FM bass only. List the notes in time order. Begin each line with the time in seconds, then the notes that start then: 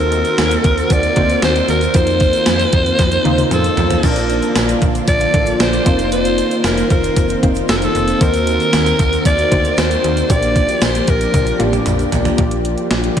Already playing: D#2
0.39 D#2
0.64 D#2
0.90 D#2
1.17 D2
1.42 D#2
1.68 D#2
1.95 F2
2.47 F2
2.73 F2
2.99 F2
3.25 D#2
3.51 F2
3.77 F2
4.03 A#1
4.56 A#1
4.82 A#1
5.08 A#1
5.34 A1
5.60 A#1
5.86 F1
6.64 F1
6.91 F1
7.16 F1
7.43 F1
7.69 F1
7.95 F1
8.21 D#2
8.74 D#2
9.00 D#2
9.25 D#2
9.52 D2
9.78 D#2
10.04 D#2
10.30 A#1
10.82 A#1
11.08 A#1
11.34 A#1
11.60 A1
11.86 A#1
12.13 A#1
12.38 A#1
12.91 A#1
13.17 A#1